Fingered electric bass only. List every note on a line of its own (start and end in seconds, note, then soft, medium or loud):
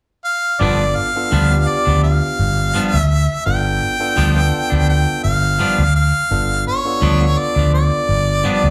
0.61 0.94 G1 medium
1.32 1.65 D2 medium
1.87 2.19 D2 medium
2.39 2.72 G1 medium
2.94 3.26 D2 medium
3.46 3.79 G1 medium
4.18 4.50 D2 medium
4.72 5.04 D2 medium
5.24 5.57 G1 medium
5.78 6.11 D2 medium
6.31 6.64 G1 medium
7.02 7.35 D2 medium
7.56 7.89 D2 medium
8.09 8.42 G1 medium
8.64 8.70 D2 medium